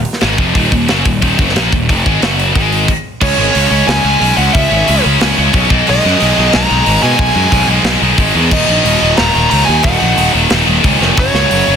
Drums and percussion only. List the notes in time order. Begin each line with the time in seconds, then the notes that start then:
0.05 open hi-hat
0.13 snare
0.21 snare, open hi-hat
0.38 kick, open hi-hat
0.55 kick, open hi-hat
0.72 kick, open hi-hat
0.88 snare, open hi-hat
1.06 kick, open hi-hat
1.22 kick, open hi-hat
1.39 kick, open hi-hat
1.49 snare
1.56 snare, open hi-hat
1.73 kick, open hi-hat
1.89 kick, open hi-hat
2.06 kick, open hi-hat
2.22 snare, open hi-hat
2.39 open hi-hat
2.55 kick, open hi-hat
2.72 open hi-hat
2.88 kick, crash
3.21 kick, crash
3.55 open hi-hat
3.88 snare, open hi-hat
4.22 open hi-hat
4.55 kick, open hi-hat
4.88 open hi-hat
5.21 snare, open hi-hat
5.53 kick, open hi-hat
5.70 kick
5.87 open hi-hat
6.20 open hi-hat
6.53 snare, open hi-hat
6.86 open hi-hat
7.19 kick
7.52 kick, open hi-hat
7.84 snare, open hi-hat
8.18 kick, open hi-hat
8.51 kick, crash
8.86 open hi-hat
9.17 snare, open hi-hat
9.51 open hi-hat
9.83 kick, open hi-hat
10.18 open hi-hat
10.50 snare, open hi-hat
10.84 kick, open hi-hat
11.02 snare
11.17 kick, open hi-hat
11.35 snare
11.51 open hi-hat